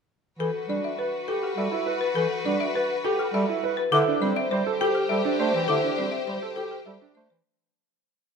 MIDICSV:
0, 0, Header, 1, 6, 480
1, 0, Start_track
1, 0, Key_signature, 1, "major"
1, 0, Tempo, 588235
1, 325, Time_signature, 3, 2, 24, 8
1, 6815, End_track
2, 0, Start_track
2, 0, Title_t, "Flute"
2, 0, Program_c, 0, 73
2, 3198, Note_on_c, 0, 86, 99
2, 3247, Note_off_c, 0, 86, 0
2, 3920, Note_on_c, 0, 79, 85
2, 3969, Note_off_c, 0, 79, 0
2, 4640, Note_on_c, 0, 86, 76
2, 4689, Note_off_c, 0, 86, 0
2, 5361, Note_on_c, 0, 79, 71
2, 5410, Note_off_c, 0, 79, 0
2, 6815, End_track
3, 0, Start_track
3, 0, Title_t, "Marimba"
3, 0, Program_c, 1, 12
3, 327, Note_on_c, 1, 69, 76
3, 482, Note_off_c, 1, 69, 0
3, 568, Note_on_c, 1, 74, 58
3, 688, Note_on_c, 1, 76, 66
3, 722, Note_off_c, 1, 74, 0
3, 805, Note_on_c, 1, 71, 53
3, 842, Note_off_c, 1, 76, 0
3, 961, Note_off_c, 1, 71, 0
3, 1044, Note_on_c, 1, 69, 71
3, 1168, Note_on_c, 1, 67, 54
3, 1200, Note_off_c, 1, 69, 0
3, 1285, Note_on_c, 1, 76, 61
3, 1322, Note_off_c, 1, 67, 0
3, 1441, Note_off_c, 1, 76, 0
3, 1639, Note_on_c, 1, 71, 65
3, 1758, Note_on_c, 1, 69, 80
3, 1798, Note_off_c, 1, 71, 0
3, 1918, Note_off_c, 1, 69, 0
3, 2003, Note_on_c, 1, 74, 67
3, 2124, Note_on_c, 1, 76, 83
3, 2160, Note_off_c, 1, 74, 0
3, 2248, Note_on_c, 1, 71, 68
3, 2280, Note_off_c, 1, 76, 0
3, 2402, Note_off_c, 1, 71, 0
3, 2487, Note_on_c, 1, 69, 87
3, 2606, Note_on_c, 1, 67, 69
3, 2641, Note_off_c, 1, 69, 0
3, 2727, Note_on_c, 1, 76, 71
3, 2761, Note_off_c, 1, 67, 0
3, 2881, Note_off_c, 1, 76, 0
3, 3077, Note_on_c, 1, 71, 77
3, 3200, Note_on_c, 1, 69, 96
3, 3238, Note_off_c, 1, 71, 0
3, 3359, Note_off_c, 1, 69, 0
3, 3441, Note_on_c, 1, 74, 75
3, 3561, Note_on_c, 1, 76, 90
3, 3599, Note_off_c, 1, 74, 0
3, 3682, Note_on_c, 1, 72, 75
3, 3719, Note_off_c, 1, 76, 0
3, 3840, Note_off_c, 1, 72, 0
3, 3925, Note_on_c, 1, 69, 91
3, 4037, Note_on_c, 1, 67, 66
3, 4081, Note_off_c, 1, 69, 0
3, 4155, Note_on_c, 1, 76, 78
3, 4198, Note_off_c, 1, 67, 0
3, 4317, Note_off_c, 1, 76, 0
3, 4404, Note_on_c, 1, 74, 71
3, 4523, Note_on_c, 1, 72, 61
3, 4560, Note_off_c, 1, 74, 0
3, 4634, Note_on_c, 1, 69, 80
3, 4680, Note_off_c, 1, 72, 0
3, 4797, Note_off_c, 1, 69, 0
3, 4874, Note_on_c, 1, 74, 63
3, 4990, Note_on_c, 1, 76, 72
3, 5037, Note_off_c, 1, 74, 0
3, 5119, Note_on_c, 1, 72, 60
3, 5155, Note_off_c, 1, 76, 0
3, 5279, Note_off_c, 1, 72, 0
3, 5354, Note_on_c, 1, 69, 79
3, 5478, Note_on_c, 1, 67, 59
3, 5517, Note_off_c, 1, 69, 0
3, 5595, Note_on_c, 1, 76, 62
3, 5638, Note_off_c, 1, 67, 0
3, 5757, Note_off_c, 1, 76, 0
3, 5834, Note_on_c, 1, 74, 67
3, 5958, Note_on_c, 1, 72, 61
3, 5997, Note_off_c, 1, 74, 0
3, 6118, Note_off_c, 1, 72, 0
3, 6815, End_track
4, 0, Start_track
4, 0, Title_t, "Violin section"
4, 0, Program_c, 2, 48
4, 322, Note_on_c, 2, 66, 56
4, 325, Note_on_c, 2, 71, 60
4, 3051, Note_off_c, 2, 66, 0
4, 3052, Note_off_c, 2, 71, 0
4, 3211, Note_on_c, 2, 67, 77
4, 3213, Note_on_c, 2, 72, 75
4, 5935, Note_off_c, 2, 67, 0
4, 5936, Note_off_c, 2, 72, 0
4, 6815, End_track
5, 0, Start_track
5, 0, Title_t, "Grand piano"
5, 0, Program_c, 3, 0
5, 564, Note_on_c, 3, 62, 50
5, 720, Note_off_c, 3, 62, 0
5, 803, Note_on_c, 3, 71, 58
5, 960, Note_off_c, 3, 71, 0
5, 1047, Note_on_c, 3, 67, 67
5, 1201, Note_off_c, 3, 67, 0
5, 1286, Note_on_c, 3, 69, 60
5, 1401, Note_on_c, 3, 64, 74
5, 1441, Note_off_c, 3, 69, 0
5, 1520, Note_on_c, 3, 71, 66
5, 1559, Note_off_c, 3, 64, 0
5, 1679, Note_off_c, 3, 71, 0
5, 2003, Note_on_c, 3, 62, 65
5, 2160, Note_off_c, 3, 62, 0
5, 2244, Note_on_c, 3, 71, 70
5, 2400, Note_off_c, 3, 71, 0
5, 2484, Note_on_c, 3, 67, 86
5, 2640, Note_off_c, 3, 67, 0
5, 2723, Note_on_c, 3, 69, 71
5, 2847, Note_on_c, 3, 64, 79
5, 2880, Note_off_c, 3, 69, 0
5, 2967, Note_on_c, 3, 71, 76
5, 3001, Note_off_c, 3, 64, 0
5, 3121, Note_off_c, 3, 71, 0
5, 3203, Note_on_c, 3, 64, 91
5, 3327, Note_on_c, 3, 62, 79
5, 3360, Note_off_c, 3, 64, 0
5, 3449, Note_on_c, 3, 60, 68
5, 3482, Note_off_c, 3, 62, 0
5, 3602, Note_off_c, 3, 60, 0
5, 3690, Note_on_c, 3, 72, 73
5, 3806, Note_on_c, 3, 69, 81
5, 3842, Note_off_c, 3, 72, 0
5, 3927, Note_on_c, 3, 67, 91
5, 3961, Note_off_c, 3, 69, 0
5, 4081, Note_off_c, 3, 67, 0
5, 4165, Note_on_c, 3, 69, 73
5, 4284, Note_on_c, 3, 62, 84
5, 4321, Note_off_c, 3, 69, 0
5, 4402, Note_on_c, 3, 72, 73
5, 4441, Note_off_c, 3, 62, 0
5, 4560, Note_off_c, 3, 72, 0
5, 4646, Note_on_c, 3, 64, 76
5, 4767, Note_on_c, 3, 62, 68
5, 4801, Note_off_c, 3, 64, 0
5, 4886, Note_on_c, 3, 60, 58
5, 4921, Note_off_c, 3, 62, 0
5, 5041, Note_off_c, 3, 60, 0
5, 5125, Note_on_c, 3, 72, 59
5, 5241, Note_on_c, 3, 69, 65
5, 5281, Note_off_c, 3, 72, 0
5, 5362, Note_on_c, 3, 67, 75
5, 5399, Note_off_c, 3, 69, 0
5, 5520, Note_off_c, 3, 67, 0
5, 5602, Note_on_c, 3, 69, 63
5, 5725, Note_on_c, 3, 62, 75
5, 5760, Note_off_c, 3, 69, 0
5, 5847, Note_on_c, 3, 72, 67
5, 5881, Note_off_c, 3, 62, 0
5, 6001, Note_off_c, 3, 72, 0
5, 6815, End_track
6, 0, Start_track
6, 0, Title_t, "Bass clarinet"
6, 0, Program_c, 4, 71
6, 319, Note_on_c, 4, 52, 71
6, 411, Note_off_c, 4, 52, 0
6, 558, Note_on_c, 4, 55, 58
6, 651, Note_off_c, 4, 55, 0
6, 1282, Note_on_c, 4, 55, 64
6, 1373, Note_off_c, 4, 55, 0
6, 1762, Note_on_c, 4, 52, 75
6, 1853, Note_off_c, 4, 52, 0
6, 2006, Note_on_c, 4, 55, 68
6, 2096, Note_off_c, 4, 55, 0
6, 2724, Note_on_c, 4, 55, 84
6, 2814, Note_off_c, 4, 55, 0
6, 3201, Note_on_c, 4, 50, 94
6, 3292, Note_off_c, 4, 50, 0
6, 3440, Note_on_c, 4, 55, 78
6, 3532, Note_off_c, 4, 55, 0
6, 3681, Note_on_c, 4, 55, 75
6, 3773, Note_off_c, 4, 55, 0
6, 4166, Note_on_c, 4, 55, 74
6, 4256, Note_off_c, 4, 55, 0
6, 4407, Note_on_c, 4, 57, 71
6, 4496, Note_off_c, 4, 57, 0
6, 4524, Note_on_c, 4, 52, 66
6, 4614, Note_off_c, 4, 52, 0
6, 4644, Note_on_c, 4, 50, 79
6, 4734, Note_off_c, 4, 50, 0
6, 4883, Note_on_c, 4, 55, 57
6, 4974, Note_off_c, 4, 55, 0
6, 5122, Note_on_c, 4, 55, 67
6, 5213, Note_off_c, 4, 55, 0
6, 5603, Note_on_c, 4, 55, 62
6, 5694, Note_off_c, 4, 55, 0
6, 5845, Note_on_c, 4, 57, 60
6, 5935, Note_off_c, 4, 57, 0
6, 5965, Note_on_c, 4, 52, 66
6, 6055, Note_off_c, 4, 52, 0
6, 6815, End_track
0, 0, End_of_file